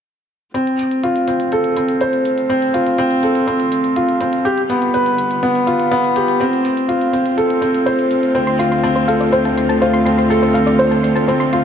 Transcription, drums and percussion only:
0.55 closed hi-hat soft
0.67 closed hi-hat soft
0.79 closed hi-hat medium
0.91 closed hi-hat soft
1.04 closed hi-hat soft
1.16 closed hi-hat soft
1.28 closed hi-hat medium
1.40 closed hi-hat soft
1.52 closed hi-hat soft
1.64 closed hi-hat soft
1.77 closed hi-hat medium
1.89 closed hi-hat soft
2.01 closed hi-hat soft
2.13 closed hi-hat soft
2.25 closed hi-hat medium
2.38 closed hi-hat soft
2.50 closed hi-hat soft
2.62 closed hi-hat soft
2.74 closed hi-hat medium
2.87 closed hi-hat soft
2.98 closed hi-hat soft
3.11 closed hi-hat soft
3.23 closed hi-hat medium
3.35 closed hi-hat soft
3.48 closed hi-hat soft
3.60 closed hi-hat soft
3.72 closed hi-hat medium
3.84 closed hi-hat soft
3.96 closed hi-hat soft
4.09 closed hi-hat soft
4.21 closed hi-hat medium
4.33 closed hi-hat soft
4.45 closed hi-hat soft
4.58 closed hi-hat soft
4.70 closed hi-hat medium
4.82 closed hi-hat soft
4.94 closed hi-hat soft
5.06 closed hi-hat soft
5.18 closed hi-hat medium
5.31 closed hi-hat soft
5.43 closed hi-hat soft
5.55 closed hi-hat soft
5.67 closed hi-hat medium
5.80 closed hi-hat soft
5.92 closed hi-hat soft
6.04 closed hi-hat soft
6.16 closed hi-hat medium
6.28 closed hi-hat soft
6.41 closed hi-hat soft
6.53 closed hi-hat soft
6.65 closed hi-hat medium
6.77 closed hi-hat soft
6.89 closed hi-hat soft
7.01 closed hi-hat soft
7.13 closed hi-hat medium
7.26 closed hi-hat soft
7.38 closed hi-hat soft
7.50 closed hi-hat soft
7.62 closed hi-hat medium
7.75 closed hi-hat soft
7.87 closed hi-hat soft
7.99 closed hi-hat soft
8.11 closed hi-hat medium
8.23 closed hi-hat soft
8.35 closed hi-hat soft
8.47 closed hi-hat soft
8.60 closed hi-hat medium
8.72 closed hi-hat soft
8.84 closed hi-hat soft
8.96 closed hi-hat soft
9.08 closed hi-hat medium
9.21 closed hi-hat soft
9.33 closed hi-hat soft
9.45 closed hi-hat soft
9.58 closed hi-hat medium
9.70 closed hi-hat soft
9.82 closed hi-hat soft
9.94 closed hi-hat soft
10.06 closed hi-hat medium
10.19 closed hi-hat soft
10.31 closed hi-hat soft
10.43 closed hi-hat soft
10.55 closed hi-hat medium
10.67 closed hi-hat soft
10.80 closed hi-hat soft
10.92 closed hi-hat soft
11.04 closed hi-hat medium
11.17 closed hi-hat soft
11.29 closed hi-hat soft
11.41 closed hi-hat soft
11.53 closed hi-hat medium

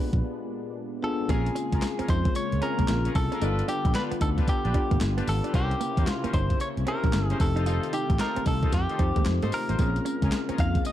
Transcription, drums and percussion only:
0.13 kick medium
0.13 closed hi-hat soft
1.29 kick loud
1.29 closed hi-hat medium
1.29 tambourine medium
1.46 closed hi-hat soft
1.56 closed hi-hat medium
1.56 tambourine medium
1.73 kick loud
1.73 closed hi-hat medium
1.82 snare loud
1.82 clap medium
1.82 closed hi-hat medium
1.82 tambourine medium
1.99 closed hi-hat medium
2.08 kick loud
2.08 closed hi-hat medium
2.08 tambourine medium
2.25 kick loud
2.25 closed hi-hat soft
2.35 closed hi-hat medium
2.35 tambourine medium
2.52 closed hi-hat soft
2.62 closed hi-hat medium
2.79 kick medium
2.79 closed hi-hat medium
2.88 snare loud
2.88 clap medium
2.88 closed hi-hat medium
2.88 tambourine medium
3.05 closed hi-hat medium
3.15 kick loud
3.15 open hi-hat medium
3.15 tambourine medium
3.32 closed hi-hat medium
3.42 closed hi-hat medium
3.42 tambourine medium
3.59 closed hi-hat soft
3.68 closed hi-hat medium
3.68 tambourine medium
3.85 kick loud
3.85 closed hi-hat medium
3.94 snare loud
3.94 clap loud
3.94 closed hi-hat medium
3.94 tambourine medium
4.12 closed hi-hat medium
4.21 kick loud
4.21 closed hi-hat medium
4.21 tambourine medium
4.38 kick medium
4.38 closed hi-hat soft
4.48 kick loud
4.48 closed hi-hat medium
4.48 tambourine medium
4.65 closed hi-hat soft
4.74 kick loud
4.74 closed hi-hat medium
4.91 kick medium
4.91 closed hi-hat soft
5.01 snare loud
5.01 clap medium
5.01 closed hi-hat medium
5.01 tambourine medium
5.18 closed hi-hat medium
5.27 open hi-hat medium
5.27 tambourine medium
5.44 closed hi-hat medium
5.54 kick loud
5.54 closed hi-hat medium
5.54 tambourine medium
5.71 closed hi-hat soft
5.81 closed hi-hat medium
5.81 tambourine medium
5.97 kick loud
5.97 closed hi-hat medium
6.07 snare loud
6.07 clap loud
6.07 closed hi-hat medium
6.07 tambourine medium
6.24 closed hi-hat medium
6.33 kick medium
6.33 closed hi-hat medium
6.33 tambourine medium
6.50 kick loud
6.50 closed hi-hat soft
6.60 closed hi-hat medium
6.60 tambourine medium
6.77 closed hi-hat soft
6.87 closed hi-hat medium
7.04 kick loud
7.04 closed hi-hat soft
7.13 snare loud
7.13 clap medium
7.13 closed hi-hat medium
7.13 tambourine medium
7.30 closed hi-hat medium
7.40 kick medium
7.40 open hi-hat medium
7.40 tambourine medium
7.57 closed hi-hat soft
7.66 closed hi-hat medium
7.66 tambourine medium
7.83 closed hi-hat medium
7.93 closed hi-hat medium
7.93 tambourine medium
8.10 kick loud
8.10 closed hi-hat medium
8.19 snare loud
8.19 clap medium
8.19 closed hi-hat medium
8.19 tambourine medium
8.36 closed hi-hat medium
8.46 kick medium
8.46 open hi-hat medium
8.46 tambourine medium
8.63 kick medium
8.63 closed hi-hat soft
8.72 kick loud
8.72 snare medium
8.72 closed hi-hat medium
8.72 tambourine medium
8.89 closed hi-hat soft
8.99 kick loud
8.99 closed hi-hat medium
9.16 kick medium
9.16 closed hi-hat medium
9.25 snare loud
9.25 clap medium
9.25 closed hi-hat medium
9.25 tambourine loud
9.42 closed hi-hat medium
9.52 open hi-hat medium
9.52 tambourine medium
9.69 closed hi-hat medium
9.79 kick loud
9.79 closed hi-hat medium
9.79 tambourine medium
9.96 closed hi-hat soft
10.06 closed hi-hat medium
10.06 tambourine medium
10.22 kick loud
10.22 closed hi-hat medium
10.32 snare loud
10.32 clap loud
10.32 closed hi-hat medium
10.32 tambourine medium
10.49 closed hi-hat medium
10.58 kick loud
10.58 closed hi-hat medium
10.58 tambourine medium
10.75 kick medium
10.75 closed hi-hat soft
10.85 closed hi-hat medium
10.85 tambourine medium

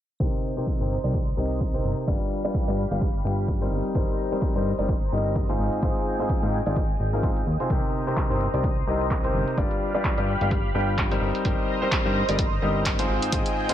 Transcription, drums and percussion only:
0.20 kick loud
0.20 closed hi-hat medium
0.67 kick medium
0.67 closed hi-hat medium
1.04 closed hi-hat soft
1.14 kick loud
1.14 closed hi-hat medium
1.61 kick medium
1.61 closed hi-hat medium
1.74 closed hi-hat soft
1.98 closed hi-hat soft
2.07 kick loud
2.07 closed hi-hat medium
2.21 closed hi-hat soft
2.54 kick loud
2.54 closed hi-hat medium
2.68 closed hi-hat soft
2.91 closed hi-hat soft
3.01 kick loud
3.01 closed hi-hat medium
3.48 kick medium
3.48 closed hi-hat medium
3.62 closed hi-hat soft
3.85 closed hi-hat soft
3.95 kick loud
3.95 closed hi-hat medium
4.42 kick loud
4.42 closed hi-hat medium
4.79 closed hi-hat soft
4.89 kick loud
4.89 closed hi-hat medium
5.36 kick medium
5.36 closed hi-hat medium
5.49 closed hi-hat soft
5.73 closed hi-hat soft
5.82 kick loud
5.82 closed hi-hat medium
5.96 closed hi-hat soft
6.29 kick loud
6.29 closed hi-hat medium
6.43 closed hi-hat soft
6.66 closed hi-hat soft
6.76 kick loud
6.76 closed hi-hat medium
7.23 kick medium
7.23 closed hi-hat medium
7.37 closed hi-hat soft
7.60 closed hi-hat soft
7.70 kick loud
7.70 closed hi-hat medium
8.17 kick loud
8.17 clap loud
8.17 closed hi-hat medium
8.54 closed hi-hat soft
8.64 kick loud
8.64 closed hi-hat medium
9.11 kick medium
9.11 clap loud
9.11 closed hi-hat medium
9.24 closed hi-hat soft
9.48 closed hi-hat soft
9.58 kick loud
9.58 closed hi-hat medium
9.71 closed hi-hat soft
10.04 kick medium
10.04 clap loud
10.04 closed hi-hat medium
10.18 closed hi-hat soft
10.41 closed hi-hat soft
10.51 kick loud
10.51 closed hi-hat medium
10.98 kick medium
10.98 clap loud
10.98 closed hi-hat medium
11.12 closed hi-hat soft
11.35 closed hi-hat soft
11.45 kick loud
11.45 closed hi-hat medium
11.92 kick loud
11.92 clap loud
11.92 closed hi-hat medium
12.29 closed hi-hat soft
12.39 kick loud
12.39 closed hi-hat medium
12.86 kick medium
12.86 clap loud
12.86 closed hi-hat medium
12.99 closed hi-hat soft
13.22 closed hi-hat soft
13.32 kick loud
13.32 closed hi-hat medium
13.46 closed hi-hat soft
13.69 closed hi-hat soft

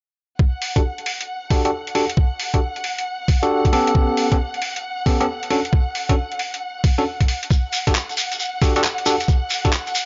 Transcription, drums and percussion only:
0.39 kick loud
0.62 open hi-hat medium
0.76 kick medium
0.76 closed hi-hat medium
0.98 closed hi-hat soft
1.06 open hi-hat loud
1.21 closed hi-hat medium
1.51 kick medium
1.51 open hi-hat loud
1.65 closed hi-hat medium
1.87 closed hi-hat soft
1.95 open hi-hat loud
2.10 closed hi-hat medium
2.17 kick loud
2.40 open hi-hat medium
2.54 kick medium
2.54 closed hi-hat medium
2.76 closed hi-hat soft
2.84 open hi-hat loud
2.98 closed hi-hat medium
3.28 kick medium
3.28 open hi-hat loud
3.43 closed hi-hat medium
3.65 kick medium
3.65 closed hi-hat soft
3.73 open hi-hat medium
3.87 closed hi-hat medium
3.95 kick loud
4.17 open hi-hat loud
4.32 kick medium
4.32 closed hi-hat medium
4.54 closed hi-hat soft
4.62 open hi-hat loud
4.76 closed hi-hat medium
5.06 kick loud
5.06 open hi-hat loud
5.21 closed hi-hat medium
5.43 closed hi-hat soft
5.50 open hi-hat medium
5.65 closed hi-hat medium
5.73 kick loud
5.95 open hi-hat medium
6.09 kick medium
6.09 closed hi-hat medium
6.32 closed hi-hat soft
6.39 open hi-hat medium
6.54 closed hi-hat medium
6.84 kick loud
6.84 open hi-hat medium
6.98 open hi-hat medium
7.21 kick medium
7.21 closed hi-hat soft
7.28 open hi-hat medium
7.43 closed hi-hat medium
7.51 kick loud
7.51 shekere medium
7.73 open hi-hat medium
7.73 shekere medium
7.87 kick medium
7.87 closed hi-hat medium
7.87 shekere soft
7.95 clap loud
7.95 shekere medium
8.09 closed hi-hat soft
8.09 shekere soft
8.17 open hi-hat loud
8.17 shekere medium
8.32 closed hi-hat medium
8.32 shekere soft
8.40 shekere medium
8.62 kick medium
8.62 open hi-hat loud
8.62 shekere medium
8.76 closed hi-hat medium
8.76 shekere soft
8.84 clap loud
8.84 shekere soft
8.98 closed hi-hat soft
9.06 open hi-hat loud
9.06 shekere medium
9.20 closed hi-hat medium
9.20 shekere soft
9.28 kick loud
9.28 shekere soft
9.50 open hi-hat loud
9.50 shekere medium
9.65 kick medium
9.65 closed hi-hat medium
9.65 shekere soft
9.73 clap loud
9.73 shekere soft
9.87 closed hi-hat soft
9.87 shekere soft
9.95 open hi-hat medium
9.95 shekere medium

